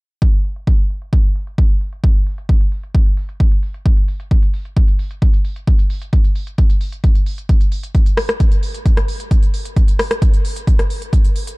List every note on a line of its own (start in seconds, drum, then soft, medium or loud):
0.22 kick loud
0.33 closed hi-hat medium
0.45 open hi-hat loud
0.56 closed hi-hat medium
0.67 kick loud
0.79 closed hi-hat medium
0.90 open hi-hat medium
1.02 closed hi-hat medium
1.13 kick loud
1.24 closed hi-hat medium
1.36 open hi-hat loud
1.47 closed hi-hat medium
1.58 kick loud
1.70 closed hi-hat medium
1.81 open hi-hat medium
1.93 closed hi-hat medium
2.04 kick loud
2.04 closed hi-hat medium
2.15 closed hi-hat medium
2.27 open hi-hat loud
2.38 closed hi-hat medium
2.49 kick loud
2.49 closed hi-hat medium
2.61 closed hi-hat medium
2.72 open hi-hat medium
2.83 closed hi-hat medium
2.95 kick loud
2.95 closed hi-hat medium
3.06 closed hi-hat medium
3.17 open hi-hat loud
3.29 closed hi-hat medium
3.40 kick loud
3.40 closed hi-hat medium
3.52 closed hi-hat medium
3.63 open hi-hat medium
3.74 closed hi-hat medium
3.85 kick loud
3.85 closed hi-hat medium
3.97 closed hi-hat medium
4.08 open hi-hat loud
4.20 closed hi-hat medium
4.31 kick loud
4.31 closed hi-hat medium
4.43 closed hi-hat medium
4.54 open hi-hat loud
4.65 closed hi-hat medium
4.76 kick loud
4.76 closed hi-hat medium
4.88 closed hi-hat medium
4.99 open hi-hat loud
5.11 closed hi-hat medium
5.22 kick loud
5.22 closed hi-hat medium
5.33 closed hi-hat medium
5.45 open hi-hat medium
5.56 closed hi-hat medium
5.67 kick loud
5.67 closed hi-hat medium
5.79 closed hi-hat medium
5.90 open hi-hat loud
6.02 closed hi-hat medium
6.13 kick loud
6.13 closed hi-hat medium
6.24 closed hi-hat medium
6.36 open hi-hat loud
6.47 closed hi-hat medium
6.58 kick loud
6.58 closed hi-hat medium
6.70 closed hi-hat medium
6.81 open hi-hat loud
6.92 closed hi-hat medium
7.04 kick loud
7.04 closed hi-hat medium
7.15 closed hi-hat medium
7.26 open hi-hat medium
7.38 closed hi-hat medium
7.49 kick loud
7.49 closed hi-hat medium
7.61 closed hi-hat medium
7.72 open hi-hat loud
7.83 closed hi-hat medium
7.95 kick loud
7.95 closed hi-hat medium
8.06 closed hi-hat medium
8.17 cross-stick loud
8.17 open hi-hat medium
8.29 cross-stick medium
8.29 closed hi-hat medium
8.40 kick loud
8.40 closed hi-hat medium
8.52 closed hi-hat medium
8.63 open hi-hat loud
8.74 closed hi-hat medium
8.86 kick loud
8.86 closed hi-hat medium
8.97 cross-stick medium
8.97 closed hi-hat medium
9.08 open hi-hat medium
9.20 closed hi-hat medium
9.31 kick loud
9.31 closed hi-hat medium
9.43 closed hi-hat medium
9.54 open hi-hat loud
9.65 closed hi-hat medium
9.76 kick loud
9.76 closed hi-hat medium
9.88 closed hi-hat medium
9.99 cross-stick medium
9.99 open hi-hat medium
10.11 cross-stick medium
10.11 closed hi-hat medium
10.22 kick loud
10.22 closed hi-hat medium
10.34 closed hi-hat medium
10.45 open hi-hat medium
10.56 closed hi-hat medium
10.67 kick loud
10.67 closed hi-hat medium
10.79 cross-stick medium
10.79 closed hi-hat medium
10.90 open hi-hat medium
11.02 closed hi-hat medium
11.13 kick loud
11.13 closed hi-hat medium
11.25 closed hi-hat medium
11.36 open hi-hat loud
11.47 closed hi-hat medium